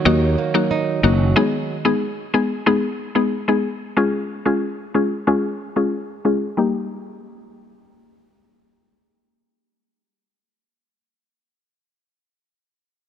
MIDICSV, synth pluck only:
0, 0, Header, 1, 2, 480
1, 0, Start_track
1, 0, Tempo, 652174
1, 999, Time_signature, 4, 2, 24, 8
1, 9629, End_track
2, 0, Start_track
2, 0, Title_t, "Synth pluck"
2, 0, Program_c, 0, 84
2, 38, Note_on_c, 0, 54, 92
2, 39, Note_on_c, 0, 58, 84
2, 41, Note_on_c, 0, 63, 89
2, 43, Note_on_c, 0, 66, 101
2, 175, Note_off_c, 0, 54, 0
2, 175, Note_off_c, 0, 58, 0
2, 176, Note_off_c, 0, 63, 0
2, 177, Note_off_c, 0, 66, 0
2, 398, Note_on_c, 0, 54, 80
2, 401, Note_on_c, 0, 58, 69
2, 402, Note_on_c, 0, 63, 67
2, 404, Note_on_c, 0, 66, 87
2, 535, Note_off_c, 0, 54, 0
2, 536, Note_off_c, 0, 58, 0
2, 537, Note_off_c, 0, 63, 0
2, 537, Note_off_c, 0, 66, 0
2, 760, Note_on_c, 0, 54, 74
2, 761, Note_on_c, 0, 58, 68
2, 763, Note_on_c, 0, 63, 68
2, 764, Note_on_c, 0, 66, 82
2, 896, Note_off_c, 0, 54, 0
2, 896, Note_off_c, 0, 58, 0
2, 897, Note_off_c, 0, 63, 0
2, 898, Note_off_c, 0, 66, 0
2, 1000, Note_on_c, 0, 56, 87
2, 1001, Note_on_c, 0, 59, 76
2, 1003, Note_on_c, 0, 63, 81
2, 1004, Note_on_c, 0, 68, 98
2, 1331, Note_off_c, 0, 56, 0
2, 1332, Note_off_c, 0, 59, 0
2, 1332, Note_off_c, 0, 63, 0
2, 1333, Note_off_c, 0, 68, 0
2, 1360, Note_on_c, 0, 56, 75
2, 1361, Note_on_c, 0, 59, 70
2, 1362, Note_on_c, 0, 63, 72
2, 1364, Note_on_c, 0, 68, 84
2, 1496, Note_off_c, 0, 56, 0
2, 1496, Note_off_c, 0, 59, 0
2, 1497, Note_off_c, 0, 63, 0
2, 1498, Note_off_c, 0, 68, 0
2, 1720, Note_on_c, 0, 56, 75
2, 1720, Note_on_c, 0, 59, 67
2, 1722, Note_on_c, 0, 63, 68
2, 1723, Note_on_c, 0, 68, 84
2, 1855, Note_off_c, 0, 56, 0
2, 1856, Note_off_c, 0, 59, 0
2, 1857, Note_off_c, 0, 63, 0
2, 1857, Note_off_c, 0, 68, 0
2, 1959, Note_on_c, 0, 56, 95
2, 1961, Note_on_c, 0, 59, 85
2, 1962, Note_on_c, 0, 63, 88
2, 1963, Note_on_c, 0, 68, 104
2, 2095, Note_off_c, 0, 56, 0
2, 2096, Note_off_c, 0, 59, 0
2, 2097, Note_off_c, 0, 63, 0
2, 2097, Note_off_c, 0, 68, 0
2, 2318, Note_on_c, 0, 56, 79
2, 2320, Note_on_c, 0, 59, 72
2, 2321, Note_on_c, 0, 63, 72
2, 2322, Note_on_c, 0, 68, 83
2, 2455, Note_off_c, 0, 56, 0
2, 2456, Note_off_c, 0, 59, 0
2, 2456, Note_off_c, 0, 63, 0
2, 2457, Note_off_c, 0, 68, 0
2, 2560, Note_on_c, 0, 56, 78
2, 2562, Note_on_c, 0, 59, 67
2, 2563, Note_on_c, 0, 63, 67
2, 2565, Note_on_c, 0, 68, 89
2, 2696, Note_off_c, 0, 56, 0
2, 2697, Note_off_c, 0, 59, 0
2, 2697, Note_off_c, 0, 63, 0
2, 2698, Note_off_c, 0, 68, 0
2, 2918, Note_on_c, 0, 56, 87
2, 2920, Note_on_c, 0, 61, 78
2, 2921, Note_on_c, 0, 65, 80
2, 2923, Note_on_c, 0, 68, 95
2, 3250, Note_off_c, 0, 56, 0
2, 3251, Note_off_c, 0, 61, 0
2, 3252, Note_off_c, 0, 65, 0
2, 3252, Note_off_c, 0, 68, 0
2, 3278, Note_on_c, 0, 56, 75
2, 3279, Note_on_c, 0, 61, 65
2, 3281, Note_on_c, 0, 65, 69
2, 3283, Note_on_c, 0, 68, 83
2, 3415, Note_off_c, 0, 56, 0
2, 3415, Note_off_c, 0, 61, 0
2, 3416, Note_off_c, 0, 65, 0
2, 3417, Note_off_c, 0, 68, 0
2, 3638, Note_on_c, 0, 56, 73
2, 3640, Note_on_c, 0, 61, 67
2, 3641, Note_on_c, 0, 65, 67
2, 3643, Note_on_c, 0, 68, 83
2, 3775, Note_off_c, 0, 56, 0
2, 3776, Note_off_c, 0, 61, 0
2, 3776, Note_off_c, 0, 65, 0
2, 3777, Note_off_c, 0, 68, 0
2, 3879, Note_on_c, 0, 56, 92
2, 3880, Note_on_c, 0, 61, 90
2, 3882, Note_on_c, 0, 65, 87
2, 3884, Note_on_c, 0, 68, 98
2, 4015, Note_off_c, 0, 56, 0
2, 4016, Note_off_c, 0, 61, 0
2, 4016, Note_off_c, 0, 65, 0
2, 4017, Note_off_c, 0, 68, 0
2, 4239, Note_on_c, 0, 56, 75
2, 4241, Note_on_c, 0, 61, 68
2, 4242, Note_on_c, 0, 65, 69
2, 4243, Note_on_c, 0, 68, 84
2, 4375, Note_off_c, 0, 56, 0
2, 4376, Note_off_c, 0, 61, 0
2, 4377, Note_off_c, 0, 65, 0
2, 4377, Note_off_c, 0, 68, 0
2, 4597, Note_on_c, 0, 56, 73
2, 4599, Note_on_c, 0, 61, 65
2, 4600, Note_on_c, 0, 65, 68
2, 4601, Note_on_c, 0, 68, 82
2, 4734, Note_off_c, 0, 56, 0
2, 4735, Note_off_c, 0, 61, 0
2, 4736, Note_off_c, 0, 65, 0
2, 4736, Note_off_c, 0, 68, 0
2, 4836, Note_on_c, 0, 55, 80
2, 4838, Note_on_c, 0, 58, 74
2, 4842, Note_on_c, 0, 63, 71
2, 4844, Note_on_c, 0, 67, 89
2, 7822, Note_off_c, 0, 55, 0
2, 7824, Note_off_c, 0, 58, 0
2, 7827, Note_off_c, 0, 63, 0
2, 7830, Note_off_c, 0, 67, 0
2, 9629, End_track
0, 0, End_of_file